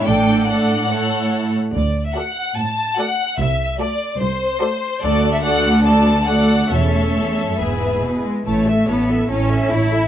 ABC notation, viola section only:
X:1
M:4/4
L:1/8
Q:1/4=143
K:D
V:1 name="Viola section"
[A,D]2 [A,D]2 [A,E]3 z | z2 [A,F]2 z2 [A,F]2 | z2 [A,F]2 z2 [A,F]2 | [K:A] [A,F]2 [A,F]2 [A,F]2 [A,F]2 |
[A,C]4 [B,E]3 z | E A E A E A E A |]